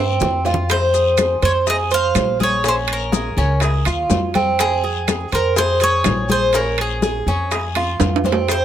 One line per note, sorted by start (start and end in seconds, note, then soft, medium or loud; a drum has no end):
0.00 0.17 G2 medium
0.00 0.44 C4 medium
0.20 1.36 F2 loud
0.20 low bongo medium
0.20 low conga loud
0.20 low timbale medium
0.20 short guiro medium
0.20 maracas medium
0.45 0.69 F4 medium
0.45 low bongo medium
0.45 low timbale medium
0.45 short guiro medium
0.45 maracas soft
0.54 low conga loud
0.70 1.45 C5 medium
0.70 high bongo medium
0.70 high conga soft
0.70 high timbale medium
0.70 long guiro medium
0.70 claves medium
0.70 maracas medium
0.94 1.41 G#4 medium
0.94 high conga soft
0.94 maracas medium
1.18 high bongo medium
1.18 high conga loud
1.18 high timbale loud
1.18 low timbale medium
1.18 short guiro medium
1.18 claves medium
1.18 maracas medium
1.42 2.12 F2 medium
1.42 1.66 C5 medium
1.42 1.51 C#5 medium
1.42 high bongo soft
1.42 high timbale medium
1.42 short guiro medium
1.42 maracas soft
1.67 1.91 G#4 medium
1.67 1.76 D#5 loud
1.67 high bongo medium
1.67 high conga soft
1.67 long guiro medium
1.67 maracas medium
1.91 2.38 C5 medium
1.91 2.43 F5 loud
1.91 high conga soft
1.91 high timbale medium
1.91 maracas medium
2.15 3.31 A#1 loud
2.15 high bongo soft
2.15 low bongo medium
2.15 high conga medium
2.15 high timbale medium
2.15 low timbale medium
2.15 short guiro medium
2.15 claves medium
2.15 maracas medium
2.39 2.64 G#4 medium
2.39 2.67 C#5 medium
2.39 high bongo soft
2.39 high conga medium
2.39 short guiro medium
2.39 maracas soft
2.64 3.12 C#4 medium
2.64 high bongo medium
2.64 high timbale medium
2.64 long guiro medium
2.64 maracas medium
2.68 2.74 C5 medium
2.88 high conga soft
2.88 high timbale loud
2.88 claves medium
2.93 3.84 A#4 medium
3.12 3.36 G#4 medium
3.12 high bongo medium
3.12 high conga loud
3.12 low timbale medium
3.12 short guiro medium
3.12 maracas medium
3.37 3.82 C#2 medium
3.37 3.61 C#4 medium
3.37 high bongo soft
3.37 high conga soft
3.37 short guiro medium
3.37 maracas soft
3.60 3.86 G#4 medium
3.60 high bongo medium
3.60 high conga soft
3.60 high timbale medium
3.60 long guiro medium
3.60 maracas medium
3.85 4.09 D#2 medium
3.85 4.33 F4 medium
3.85 high conga soft
3.85 high timbale medium
3.85 claves medium
3.85 maracas medium
4.10 5.26 F2 loud
4.10 high bongo soft
4.10 low bongo medium
4.10 high conga medium
4.10 low timbale medium
4.10 short guiro medium
4.10 maracas medium
4.34 4.82 C4 medium
4.34 high bongo soft
4.34 high conga medium
4.34 high timbale medium
4.34 short guiro medium
4.34 maracas soft
4.59 5.34 G#4 medium
4.59 high bongo medium
4.59 high conga soft
4.59 high timbale medium
4.59 long guiro medium
4.59 claves medium
4.59 maracas medium
4.84 5.31 G#4 medium
4.84 high conga soft
5.07 high bongo medium
5.07 high conga loud
5.07 high timbale medium
5.07 low timbale medium
5.07 short guiro medium
5.07 claves medium
5.07 maracas medium
5.32 6.02 F2 medium
5.32 5.59 A#4 medium
5.32 5.56 C5 medium
5.32 high bongo soft
5.32 high timbale medium
5.32 short guiro medium
5.32 maracas soft
5.55 5.80 G#4 medium
5.55 5.83 C5 loud
5.55 high bongo medium
5.55 high conga soft
5.55 long guiro medium
5.55 maracas medium
5.80 6.28 G#4 medium
5.80 6.31 C#5 loud
5.80 high conga soft
5.80 high timbale medium
5.80 maracas medium
6.04 7.21 A#1 loud
6.04 high bongo soft
6.04 low bongo medium
6.04 high conga medium
6.04 high timbale loud
6.04 low timbale medium
6.04 short guiro medium
6.04 claves medium
6.04 maracas medium
6.29 6.53 G#4 medium
6.29 6.56 C5 loud
6.29 high bongo soft
6.29 high conga medium
6.29 short guiro medium
6.29 maracas soft
6.53 7.02 C#4 medium
6.53 6.80 A#4 medium
6.53 high bongo medium
6.53 high conga soft
6.53 high timbale medium
6.53 long guiro medium
6.53 maracas medium
6.78 7.73 G#4 medium
6.78 high conga soft
6.78 high timbale loud
6.78 claves medium
7.02 7.27 G#4 medium
7.02 high bongo medium
7.02 high conga loud
7.02 low timbale medium
7.02 short guiro medium
7.02 maracas medium
7.27 7.96 F2 medium
7.27 7.51 C#4 medium
7.27 high bongo soft
7.27 high conga soft
7.27 short guiro medium
7.27 maracas soft
7.51 7.75 G#4 medium
7.51 high bongo medium
7.51 high conga soft
7.51 high timbale medium
7.51 long guiro medium
7.51 maracas medium
7.75 8.23 F4 medium
7.75 high bongo medium
7.75 high conga soft
7.75 high timbale medium
7.75 claves medium
8.00 8.65 F2 loud
8.00 low bongo loud
8.00 high conga medium
8.00 high timbale loud
8.00 short guiro medium
8.00 maracas medium
8.16 high timbale medium
8.24 8.65 C4 medium
8.24 low bongo medium
8.24 high conga medium
8.24 short guiro medium
8.24 maracas soft
8.32 low timbale loud
8.48 8.65 C5 medium
8.48 high bongo medium
8.48 high conga soft
8.48 high timbale medium
8.48 long guiro medium
8.48 claves medium
8.48 maracas medium